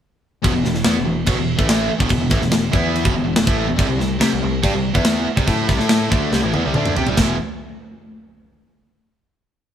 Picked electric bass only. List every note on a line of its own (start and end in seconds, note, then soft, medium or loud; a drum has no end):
0.45 0.55 E1 loud
0.56 0.65 E1 medium
0.65 0.85 E1 medium
0.86 0.96 E2 medium
0.96 1.05 E1 medium
1.06 1.26 E1 medium
1.27 1.36 B1 medium
1.37 1.57 E1 medium
1.59 1.88 A1 loud
1.90 muted picked electric bass stroke soft
2.00 2.10 E1 medium
2.11 2.19 E1 medium
2.20 2.30 E1 medium
2.31 2.40 A1 medium
2.41 2.51 E1 medium
2.52 2.72 E1 medium
2.74 3.03 E2 loud
3.05 3.15 E1 medium
3.18 3.27 E1 medium
3.27 3.36 E1 medium
3.37 3.47 E1 medium
3.48 3.67 A1 loud
3.69 3.78 E1 medium
3.79 3.89 C2 loud
3.90 3.99 C2 medium
4.00 4.20 C2 medium
4.21 4.31 C3 medium
4.33 4.42 C2 medium
4.44 4.62 C2 medium
4.64 4.73 G2 loud
4.75 4.94 C2 medium
4.95 5.24 E2 loud
5.27 muted picked electric bass stroke soft
5.37 5.47 C2 medium
5.48 5.68 A2 loud
5.69 5.78 C2 medium
5.79 6.08 A2 medium
6.12 6.31 D2 loud
6.32 6.42 C2 medium
6.44 6.54 A1 medium
6.54 6.64 E2 medium
6.66 6.75 C2 loud
6.75 6.95 D2 medium
6.97 7.07 C3 medium
7.08 7.17 C2 medium
7.18 7.38 E1 loud